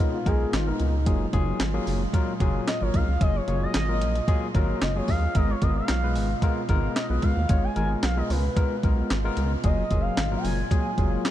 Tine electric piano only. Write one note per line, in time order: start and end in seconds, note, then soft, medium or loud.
0.00 0.18 G#3 medium
0.00 0.18 B3 medium
0.00 0.18 F4 medium
0.00 0.18 A#4 medium
0.26 0.53 G#3 medium
0.26 0.53 B3 medium
0.26 0.53 F4 medium
0.26 0.53 A#4 medium
0.67 0.94 G#3 medium
0.67 0.94 B3 medium
0.67 0.94 F4 medium
0.67 0.94 A#4 medium
1.06 1.25 F#3 medium
1.06 1.25 A#3 medium
1.06 1.25 F4 medium
1.06 1.25 G#4 medium
1.33 1.60 F#3 medium
1.33 1.60 A#3 medium
1.33 1.60 F4 medium
1.33 1.60 G#4 loud
1.74 2.01 F#3 loud
1.74 2.01 A#3 medium
1.74 2.01 F4 medium
1.74 2.01 G#4 medium
2.13 2.32 F#3 medium
2.13 2.32 A#3 medium
2.13 2.32 F4 medium
2.13 2.32 A#4 medium
2.41 2.68 F#3 loud
2.41 2.68 A#3 medium
2.41 2.68 F4 medium
2.41 2.68 G#4 medium
2.81 3.08 F#3 medium
2.81 3.09 A#3 medium
2.81 3.09 F4 medium
2.81 3.09 A#4 medium
3.21 3.39 F#3 medium
3.21 3.39 A#3 medium
3.21 3.40 F4 medium
3.21 3.40 G#4 medium
3.47 3.74 F#3 medium
3.47 3.75 A#3 medium
3.47 3.75 F4 medium
3.47 3.75 G#4 medium
3.88 4.15 F#3 medium
3.88 4.16 A#3 medium
3.88 4.16 F4 medium
3.88 4.16 A#4 medium
4.28 4.46 F#3 medium
4.28 4.46 A#3 medium
4.28 4.47 F4 medium
4.28 4.47 G#4 loud
4.55 4.82 F#3 loud
4.55 4.82 A#3 medium
4.55 4.82 F4 medium
4.55 4.82 A#4 loud
4.95 5.23 F#3 medium
4.95 5.23 A#3 medium
4.95 5.23 F4 medium
4.95 5.23 G#4 medium
5.35 5.54 G#3 medium
5.35 5.54 B3 medium
5.35 5.54 F4 medium
5.35 5.54 A#4 medium
5.62 5.89 G#3 medium
5.62 5.89 B3 medium
5.62 5.89 F4 medium
5.62 5.89 A#4 medium
6.03 6.30 G#3 medium
6.03 6.30 B3 medium
6.03 6.30 F4 medium
6.03 6.30 B4 medium
6.43 6.61 G#3 medium
6.43 6.61 B3 medium
6.43 6.61 F4 medium
6.43 6.62 A#4 loud
6.69 6.96 G#3 medium
6.69 6.96 B3 medium
6.69 6.96 F4 medium
6.69 6.96 A#4 loud
7.10 7.37 G#3 medium
7.10 7.37 B3 medium
7.10 7.37 F4 medium
7.10 7.37 B4 medium
7.49 7.68 G#3 medium
7.49 7.68 B3 medium
7.49 7.68 F4 medium
7.49 7.68 C#5 medium
7.76 8.03 G#3 medium
7.76 8.03 B3 medium
7.76 8.03 F4 medium
7.76 8.03 A#4 medium
8.17 8.44 G#3 medium
8.17 8.44 B3 medium
8.17 8.44 F4 medium
8.17 8.44 A#4 medium
8.56 8.75 G#3 medium
8.56 8.75 B3 medium
8.56 8.75 F4 medium
8.56 8.75 A#4 medium
8.84 9.10 G#3 medium
8.84 9.11 B3 medium
8.84 9.11 F4 medium
8.84 9.11 A#4 medium
9.24 9.51 G#3 medium
9.24 9.52 B3 medium
9.24 9.52 F4 medium
9.24 9.52 A#4 loud
9.64 9.82 F#3 medium
9.64 9.82 A#3 medium
9.64 9.83 F4 medium
9.64 9.83 G#4 medium
9.90 10.17 F#3 medium
9.90 10.18 A#3 medium
9.90 10.18 F4 medium
9.90 10.18 G#4 medium
10.31 10.58 F#3 medium
10.31 10.59 A#3 medium
10.31 10.59 F4 medium
10.31 10.59 A#4 medium
10.71 10.89 F#3 medium
10.71 10.89 A#3 medium
10.71 10.90 F4 medium
10.71 10.90 G#4 medium
10.97 11.25 F#3 medium
10.97 11.25 A#3 medium
10.97 11.25 F4 medium
10.97 11.25 G#4 medium